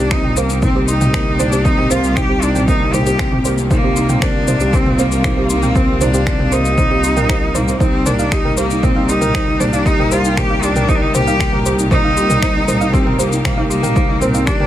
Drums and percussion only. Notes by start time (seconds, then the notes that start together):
0.11 finger snap, kick, shaker
0.24 mid tom
0.37 shaker
0.50 shaker
0.62 kick, mid tom, shaker
0.88 shaker
1.01 mid tom, shaker
1.14 finger snap, kick, shaker
1.40 mid tom, shaker
1.52 shaker
1.65 kick, shaker
1.78 mid tom
1.91 shaker
2.04 shaker
2.17 finger snap, kick, mid tom, shaker
2.42 shaker
2.55 mid tom, shaker
2.68 kick, shaker
2.94 mid tom, shaker
3.06 shaker
3.19 finger snap, kick, shaker
3.32 mid tom
3.45 shaker
3.58 shaker
3.71 kick, mid tom, shaker
3.96 shaker
4.09 mid tom, shaker
4.22 finger snap, kick, shaker
4.48 mid tom, shaker
4.60 shaker
4.73 kick, shaker
4.86 mid tom
4.99 shaker
5.12 shaker
5.24 finger snap, kick, mid tom, shaker
5.50 shaker
5.63 mid tom, shaker
5.76 kick, shaker
6.01 mid tom, shaker
6.14 shaker
6.27 finger snap, kick, shaker
6.39 mid tom
6.52 shaker
6.65 shaker
6.78 kick, mid tom, shaker
7.04 shaker
7.17 mid tom, shaker
7.29 finger snap, kick, shaker
7.55 mid tom, shaker
7.68 shaker
7.80 kick, shaker
8.06 mid tom, shaker
8.19 shaker
8.32 finger snap, kick, shaker
8.45 mid tom
8.57 shaker
8.70 shaker
8.83 kick, mid tom, shaker
9.09 shaker
9.22 mid tom, shaker
9.34 finger snap, kick, shaker
9.61 mid tom, shaker
9.73 shaker
9.86 kick, shaker
9.99 mid tom
10.12 shaker
10.25 shaker
10.37 finger snap, kick, mid tom, shaker
10.63 shaker
10.76 mid tom, shaker
10.89 kick, shaker
11.15 mid tom, shaker
11.27 shaker
11.40 finger snap, kick, shaker
11.53 mid tom
11.66 shaker
11.79 shaker
11.91 kick, mid tom, shaker
12.17 shaker
12.30 mid tom, shaker
12.42 finger snap, kick, shaker
12.68 mid tom, shaker
12.81 shaker
12.94 kick, shaker
13.07 mid tom
13.19 shaker
13.32 shaker
13.45 finger snap, kick, mid tom, shaker
13.71 shaker
13.84 mid tom, shaker
13.96 kick, shaker
14.22 mid tom, shaker
14.34 shaker
14.47 finger snap, kick, shaker
14.60 mid tom